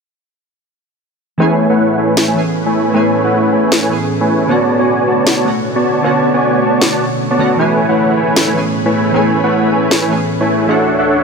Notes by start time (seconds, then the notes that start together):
1.38 A2 E3 A3 B3 C#4 E4 G#4 B4 C#5 G#5
1.70 A3 E4 B4 C#5 F#5
1.98 A3 E4 B4 C#5 G#5
2.17 snare
2.28 A3 E4 B4 C#5 G#5
2.34 E3 A3 B3 C#4
2.38 G#4
2.66 A3 E4 B4 C#5 G#5
2.92 E3 A3 B3 C#4 E4 B4 C#5 G#5
2.96 G#4
3.24 A3 E4 B4 C#5 F#5
3.52 A3 E4 B4 C#5 G#5
3.72 snare
3.82 A3 E4 B4 C#5 G#5
3.89 E3 A3 B3 C#4
3.93 G#4
4.21 A3 E4 B4 C#5 G#5
4.47 B2 D3 A3 B3 C#4 F#4 C#5 D5 A5
4.79 B3 F#4 C#5 D5 G#5
5.07 B3 F#4 C#5 D5 A5
5.27 snare
5.37 B3 F#4 C#5 D5 A5
5.44 D3 A3 B3 C#4 F#4
5.76 B3 F#4 C#5 D5 A5
6.02 D3 A3 B3 C#4 F#4 C#5 D5 A5
6.06 F#4
6.34 B3 F#4 C#5 D5 G#5
6.62 B3 F#4 C#5 D5 A5
6.82 snare
6.92 B3 F#4 C#5 D5 A5
7.31 B3 F#4 C#5 D5 A5
7.38 D3 A3 B3 C#4 F#4
7.57 A2 E3 A3 B3 C#4 E4 G#4 B4 C#5 G#5
7.61 G#4
7.89 A3 E4 B4 C#5 F#5
8.17 A3 E4 B4 C#5 G#5
8.36 snare
8.47 A3 E4 B4 C#5 G#5
8.54 E3 A3 B3 C#4
8.58 G#4
8.86 A3 E4 B4 C#5 G#5
9.12 E3 A3 B3 C#4 E4 B4 C#5 G#5
9.16 G#4
9.44 A3 E4 B4 C#5 F#5
9.72 A3 E4 B4 C#5 G#5
9.91 snare
10.02 A3 E4 B4 C#5 G#5
10.09 E3 A3 B3 C#4 G#4
10.41 A3 E4 B4 C#5 G#5
10.67 D2 E3 A3 C#4 D4 E4 F#4 A4 C#5 E5 F#5
10.99 D4 A4 C#5 E5 F#5